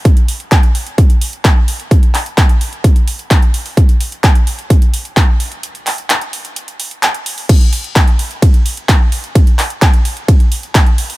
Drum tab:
CC |----------------|----------------|----------------|----------------|
RD |----------------|----------------|----------------|----------------|
HH |xxoxxxoxxxoxx-ox|xxoxxxoxxxoxxxoo|xxoxxxoxxxoxx-ox|xxoxxxoxxxoxxxoo|
CP |----x-------x---|--x-x-------x---|----x-------x---|--x-x-------x---|
BD |o---o---o---o---|o---o---o---o---|o---o---o---o---|----------------|

CC |x---------------|----------------|
RD |x---x---x---x---|x---x---x---x---|
HH |xxoxxxoxxxoxx-ox|xxoxxxoxxxoxxxoo|
CP |----x-------x---|--x-x-------x---|
BD |o---o---o---o---|o---o---o---o---|